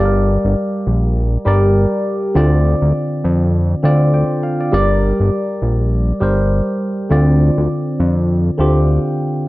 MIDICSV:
0, 0, Header, 1, 3, 480
1, 0, Start_track
1, 0, Key_signature, -2, "minor"
1, 0, Tempo, 594059
1, 1902, Time_signature, 4, 2, 24, 8
1, 7661, End_track
2, 0, Start_track
2, 0, Title_t, "Tine electric piano"
2, 0, Program_c, 0, 4
2, 0, Note_on_c, 0, 55, 90
2, 0, Note_on_c, 0, 67, 81
2, 0, Note_on_c, 0, 74, 97
2, 0, Note_on_c, 0, 77, 62
2, 41, Note_on_c, 0, 70, 78
2, 110, Note_off_c, 0, 77, 0
2, 119, Control_c, 0, 64, 127
2, 767, Note_off_c, 0, 55, 0
2, 771, Note_off_c, 0, 67, 0
2, 777, Note_off_c, 0, 74, 0
2, 800, Note_off_c, 0, 70, 0
2, 1172, Note_on_c, 0, 55, 92
2, 1179, Note_on_c, 0, 67, 84
2, 1186, Note_on_c, 0, 70, 83
2, 1193, Note_on_c, 0, 74, 97
2, 1778, Note_off_c, 0, 55, 0
2, 1782, Note_off_c, 0, 67, 0
2, 1785, Note_off_c, 0, 70, 0
2, 1789, Note_off_c, 0, 74, 0
2, 1894, Note_on_c, 0, 50, 88
2, 1900, Note_on_c, 0, 60, 84
2, 1907, Note_on_c, 0, 65, 80
2, 1913, Control_c, 0, 64, 0
2, 1914, Note_on_c, 0, 74, 96
2, 2056, Control_c, 0, 64, 127
2, 2687, Note_off_c, 0, 50, 0
2, 2690, Note_off_c, 0, 60, 0
2, 2693, Note_off_c, 0, 65, 0
2, 2697, Note_off_c, 0, 74, 0
2, 3093, Note_on_c, 0, 50, 87
2, 3099, Note_on_c, 0, 60, 82
2, 3106, Note_on_c, 0, 65, 81
2, 3113, Note_on_c, 0, 74, 95
2, 3344, Note_on_c, 0, 79, 69
2, 3348, Note_off_c, 0, 74, 0
2, 3571, Note_off_c, 0, 79, 0
2, 3582, Note_on_c, 0, 77, 75
2, 3699, Note_off_c, 0, 50, 0
2, 3702, Note_off_c, 0, 60, 0
2, 3705, Note_off_c, 0, 65, 0
2, 3714, Note_off_c, 0, 77, 0
2, 3722, Note_on_c, 0, 74, 67
2, 3810, Note_on_c, 0, 55, 88
2, 3817, Note_on_c, 0, 67, 81
2, 3821, Note_off_c, 0, 74, 0
2, 3823, Note_on_c, 0, 70, 83
2, 3830, Note_on_c, 0, 74, 103
2, 3832, Control_c, 0, 64, 0
2, 3962, Control_c, 0, 64, 127
2, 4605, Note_off_c, 0, 55, 0
2, 4608, Note_off_c, 0, 67, 0
2, 4612, Note_off_c, 0, 70, 0
2, 4615, Note_off_c, 0, 74, 0
2, 5013, Note_on_c, 0, 55, 89
2, 5019, Note_on_c, 0, 67, 80
2, 5026, Note_on_c, 0, 70, 83
2, 5033, Note_on_c, 0, 72, 98
2, 5618, Note_off_c, 0, 55, 0
2, 5622, Note_off_c, 0, 67, 0
2, 5625, Note_off_c, 0, 70, 0
2, 5629, Note_off_c, 0, 72, 0
2, 5732, Note_on_c, 0, 50, 87
2, 5739, Note_on_c, 0, 60, 82
2, 5746, Note_on_c, 0, 65, 79
2, 5753, Control_c, 0, 64, 0
2, 5753, Note_on_c, 0, 74, 95
2, 5891, Control_c, 0, 64, 127
2, 6526, Note_off_c, 0, 50, 0
2, 6529, Note_off_c, 0, 60, 0
2, 6533, Note_off_c, 0, 65, 0
2, 6536, Note_off_c, 0, 74, 0
2, 6932, Note_on_c, 0, 50, 88
2, 6939, Note_on_c, 0, 60, 81
2, 6946, Note_on_c, 0, 65, 78
2, 6952, Note_on_c, 0, 67, 100
2, 7538, Note_off_c, 0, 50, 0
2, 7542, Note_off_c, 0, 60, 0
2, 7545, Note_off_c, 0, 65, 0
2, 7548, Note_off_c, 0, 67, 0
2, 7661, End_track
3, 0, Start_track
3, 0, Title_t, "Analog synth bass"
3, 0, Program_c, 1, 38
3, 0, Note_on_c, 1, 31, 110
3, 307, Note_off_c, 1, 31, 0
3, 362, Note_on_c, 1, 31, 93
3, 448, Note_off_c, 1, 31, 0
3, 702, Note_on_c, 1, 34, 89
3, 1114, Note_off_c, 1, 34, 0
3, 1182, Note_on_c, 1, 31, 92
3, 1507, Note_off_c, 1, 31, 0
3, 1901, Note_on_c, 1, 38, 110
3, 2227, Note_off_c, 1, 38, 0
3, 2280, Note_on_c, 1, 38, 92
3, 2367, Note_off_c, 1, 38, 0
3, 2621, Note_on_c, 1, 41, 96
3, 3033, Note_off_c, 1, 41, 0
3, 3102, Note_on_c, 1, 38, 92
3, 3427, Note_off_c, 1, 38, 0
3, 3822, Note_on_c, 1, 31, 108
3, 4147, Note_off_c, 1, 31, 0
3, 4202, Note_on_c, 1, 31, 91
3, 4288, Note_off_c, 1, 31, 0
3, 4542, Note_on_c, 1, 34, 89
3, 4954, Note_off_c, 1, 34, 0
3, 5021, Note_on_c, 1, 31, 95
3, 5346, Note_off_c, 1, 31, 0
3, 5742, Note_on_c, 1, 38, 103
3, 6067, Note_off_c, 1, 38, 0
3, 6121, Note_on_c, 1, 38, 88
3, 6208, Note_off_c, 1, 38, 0
3, 6462, Note_on_c, 1, 41, 91
3, 6874, Note_off_c, 1, 41, 0
3, 6943, Note_on_c, 1, 38, 88
3, 7268, Note_off_c, 1, 38, 0
3, 7661, End_track
0, 0, End_of_file